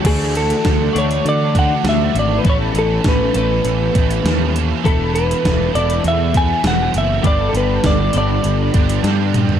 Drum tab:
CC |x---------------|----------------|----------------|----------------|
HH |x-xxx-xxx-x-x-x-|x-x-x-x-x-xxx-x-|x-xxx-xxx-x-x-x-|x-x-x-x-x-xxx-x-|
SD |----o-------o---|----o-------o---|----o-------o---|----o-------o---|
T2 |----------------|----------------|----------------|--------------o-|
FT |----------------|----------------|----------------|---------------o|
BD |o---o-----o-----|o---o-----o-----|o---o-----o-----|o---o-----o-----|